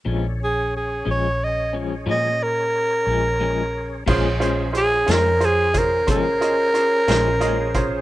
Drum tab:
CC |------------|x-----------|
HH |------------|-xxxxxxxxxxx|
SD |------------|---o-----o--|
BD |------------|o----oo----o|